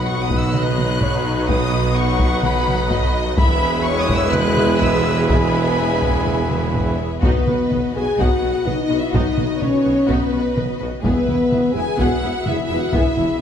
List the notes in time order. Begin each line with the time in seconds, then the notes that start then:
Already playing: B1 B2 F#3 B3 D#4 F#4 B4 D#5 F#5
0.06 C#6
0.22 D#6
0.30 taiko
0.38 E6
0.54 D#5 F#6, taiko mid
0.78 taiko mid
1.01 C#5, taiko
1.49 B4 D#6, taiko
1.96 F#5 C#6
2.20 taiko
2.44 B5, taiko mid
2.68 taiko mid
2.91 D#5, taiko
3.38 E1 E2 G#3 B3 E4 G#4 B4 E5 B5, taiko
3.85 C#5 C#6
4.01 D#6
4.09 taiko
4.16 E6
4.33 B4 F#6, taiko mid
4.57 taiko mid
4.80 E6, taiko
5.27 G#5 B5, taiko
6.02 taiko
6.27 taiko mid
6.51 taiko mid
6.75 taiko
7.21 B1 B2 B3 D#4 F#4 B4 D#5, taiko
7.46 B1 B2 B3 F#4 B4, taiko mid
7.69 B1 B2 B3 B4 D#5, taiko mid
7.94 B1 B2 B3 F#4 G#4 B4 G#5
8.18 B1 B2 B3 D#4 F#4 F#5, taiko
8.42 B1 B2 B3 F#4 B4
8.64 B1 B2 B3 D#4 B4 D#5, taiko mid
8.68 B1 D#5
8.83 D#4 D#5
8.90 B1 B2 B3 F#4 B4
9.00 E4 E5
9.11 B1 B2 B3 D#4 F#4
9.15 B1 D#5, taiko
9.35 B1 B2 B3 F#4 B4, taiko mid
9.40 B1
9.59 B1 B2 B3 B4 C#5 D#5, taiko mid
9.63 C#4
9.84 B1 B2 B3 F#4 B4
10.07 B1 B2 B3 D#4 F#4 B4, taiko
10.31 B1 B2 B3 F#4 B4
10.56 B1 B2 B3 B4 D#5, taiko mid
10.79 B1 B2 B3 F#4 B4
11.03 E1 E2 B3 G#4 B4 E5, taiko
11.27 E1 E2 B3 E4 B4, taiko mid
11.51 E1 E2 B3 G#4 E5, taiko mid
11.74 E1 E2 B3 E4 G#4 B4 G#5
11.97 E1 E2 B3 F#4 G#4 F#5, taiko
12.21 E1 E2 B3 E4 B4
12.46 E1 E2 B3 E4 G#4 E5, taiko mid
12.62 E4 E5
12.70 E1 E2 B3 E4 B4
12.78 F#4 F#5
12.93 E1 E2 B3 E4 G#4 E5, taiko
13.16 E1 E2 B3 E4 B4, taiko mid